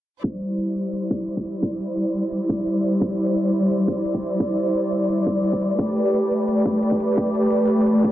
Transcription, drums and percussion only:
0.24 kick loud
0.24 closed hi-hat medium
0.41 closed hi-hat medium
0.58 closed hi-hat medium
0.76 closed hi-hat medium
0.93 closed hi-hat medium
1.10 kick medium
1.10 closed hi-hat medium
1.28 closed hi-hat medium
1.37 kick medium
1.37 closed hi-hat soft
1.45 closed hi-hat medium
1.63 kick loud
1.63 closed hi-hat medium
1.72 closed hi-hat soft
1.80 closed hi-hat medium
1.97 closed hi-hat medium
2.15 closed hi-hat medium
2.32 closed hi-hat medium
2.49 kick loud
2.49 closed hi-hat medium
2.67 closed hi-hat medium
2.76 closed hi-hat soft
2.84 closed hi-hat medium
3.01 kick loud
3.01 closed hi-hat medium
3.11 closed hi-hat soft
3.19 closed hi-hat medium
3.36 closed hi-hat medium
3.53 closed hi-hat medium
3.71 closed hi-hat medium
3.88 kick medium
3.88 closed hi-hat medium
4.05 closed hi-hat medium
4.14 kick medium
4.14 closed hi-hat soft
4.23 closed hi-hat medium
4.40 kick loud
4.40 closed hi-hat medium
4.49 closed hi-hat soft
4.57 closed hi-hat medium
4.66 closed hi-hat soft
4.75 closed hi-hat medium
4.92 closed hi-hat medium
5.09 closed hi-hat medium
5.27 kick loud
5.27 closed hi-hat medium
5.44 closed hi-hat medium
5.53 kick medium
5.53 closed hi-hat soft
5.61 closed hi-hat medium
5.71 closed hi-hat soft
5.79 kick loud
5.79 closed hi-hat medium
5.88 closed hi-hat soft
5.96 closed hi-hat medium
6.13 closed hi-hat medium
6.31 closed hi-hat medium
6.48 closed hi-hat medium
6.65 kick medium
6.65 closed hi-hat medium
6.83 closed hi-hat medium
6.92 kick medium
6.92 closed hi-hat soft
7.00 closed hi-hat medium
7.17 kick loud
7.17 closed hi-hat medium
7.27 closed hi-hat soft
7.35 closed hi-hat medium
7.52 closed hi-hat medium
7.70 closed hi-hat medium
7.87 closed hi-hat medium
8.04 kick medium
8.04 closed hi-hat medium

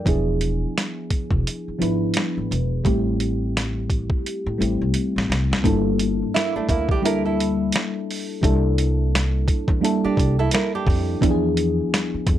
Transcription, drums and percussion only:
0.06 kick medium
0.06 closed hi-hat medium
0.41 closed hi-hat medium
0.78 snare medium
0.78 closed hi-hat medium
1.10 kick medium
1.10 closed hi-hat medium
1.31 kick medium
1.47 closed hi-hat medium
1.82 closed hi-hat medium
2.14 snare loud
2.14 closed hi-hat medium
2.52 closed hi-hat soft
2.85 kick loud
2.85 closed hi-hat medium
3.20 closed hi-hat medium
3.57 snare medium
3.57 closed hi-hat medium
3.90 kick medium
3.90 closed hi-hat medium
4.10 kick medium
4.26 closed hi-hat medium
4.62 closed hi-hat medium
4.94 closed hi-hat medium
5.18 snare medium
5.32 snare medium
5.32 closed hi-hat soft
5.53 snare medium
5.64 kick loud
5.64 closed hi-hat medium
5.99 closed hi-hat medium
6.36 snare loud
6.36 closed hi-hat medium
6.69 kick medium
6.69 closed hi-hat medium
6.89 kick loud
7.05 closed hi-hat medium
7.40 closed hi-hat medium
7.72 snare loud
7.72 closed hi-hat medium
8.11 open hi-hat soft
8.43 kick loud
8.43 closed hi-hat medium
8.78 closed hi-hat medium
9.15 snare loud
9.15 closed hi-hat medium
9.48 kick medium
9.48 closed hi-hat medium
9.68 kick medium
9.85 closed hi-hat medium
10.17 kick medium
10.17 closed hi-hat medium
10.51 snare loud
10.51 closed hi-hat medium
10.87 kick medium
10.87 open hi-hat soft
11.22 kick loud
11.22 closed hi-hat medium
11.57 closed hi-hat medium
11.94 snare loud
11.94 closed hi-hat medium
12.27 kick medium
12.27 closed hi-hat medium

